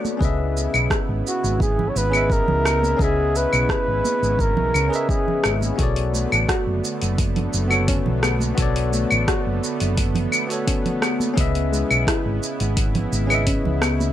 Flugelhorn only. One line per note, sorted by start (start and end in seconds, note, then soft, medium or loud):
1.28 1.60 F#4 medium
1.62 1.90 G#4 medium
1.89 1.99 C#5 medium
1.97 2.34 B4 loud
2.32 3.04 A#4 loud
3.02 3.38 G#4 loud
3.37 3.71 B4 medium
3.71 4.42 B4 loud
4.41 5.09 A#4 medium
5.10 5.59 G#4 medium